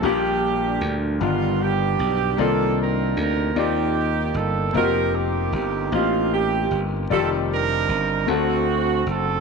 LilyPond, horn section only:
\new Staff \with { instrumentName = "Horn section" } { \time 6/8 \key f \mixolydian \tempo 4. = 51 << { g'4 r8 f'8 g'4 | a'8 bes'8 bes'8 g'4 a'8 | bes'8 g'8 g'8 f'8 g'8 r8 | a'8 bes'4 fis'4 a'8 | } \\ { d'4. <b d'>8 <b d'>4 | <d' ees'>4. <bes ees'>4. | <ees' g'>4. r4. | <c' ees'>8 <d' ees'>4 <a c'>4. | } >> }